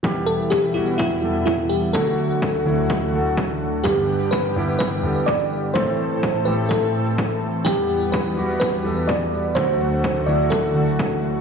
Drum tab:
BD |o-o-o-o-|o-o-o-o-|o-o-o-o-|o-o-o-o-|

BD |o-o-o-o-|o-o-o-o-|